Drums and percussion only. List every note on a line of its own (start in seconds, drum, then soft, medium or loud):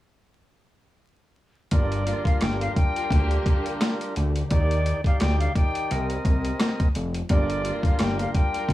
1.71 kick loud
1.71 closed hi-hat medium
1.92 closed hi-hat medium
2.07 closed hi-hat medium
2.25 kick medium
2.25 closed hi-hat medium
2.41 cross-stick medium
2.41 snare loud
2.41 closed hi-hat medium
2.61 closed hi-hat soft
2.76 kick loud
2.76 closed hi-hat medium
2.96 closed hi-hat medium
3.10 kick loud
3.10 closed hi-hat medium
3.31 closed hi-hat soft
3.46 kick medium
3.46 closed hi-hat medium
3.66 closed hi-hat medium
3.81 cross-stick loud
3.81 snare loud
3.81 closed hi-hat loud
4.01 closed hi-hat medium
4.16 closed hi-hat medium
4.36 closed hi-hat medium
4.51 kick loud
4.51 closed hi-hat medium
4.71 closed hi-hat medium
4.86 closed hi-hat medium
5.04 kick medium
5.04 closed hi-hat medium
5.20 cross-stick medium
5.20 snare loud
5.20 closed hi-hat medium
5.41 closed hi-hat medium
5.56 kick loud
5.56 closed hi-hat medium
5.75 closed hi-hat medium
5.91 closed hi-hat medium
6.10 closed hi-hat soft
6.25 kick medium
6.25 closed hi-hat medium
6.45 closed hi-hat medium
6.60 cross-stick medium
6.60 snare loud
6.60 closed hi-hat loud
6.80 kick loud
6.80 closed hi-hat medium
6.95 closed hi-hat medium
7.14 closed hi-hat medium
7.29 kick loud
7.29 closed hi-hat medium
7.50 closed hi-hat medium
7.65 closed hi-hat medium
7.83 kick medium
7.83 closed hi-hat medium
7.99 cross-stick medium
7.99 snare loud
7.99 closed hi-hat medium
8.19 closed hi-hat soft
8.35 kick loud
8.35 closed hi-hat medium
8.54 closed hi-hat medium
8.69 kick loud
8.69 closed hi-hat medium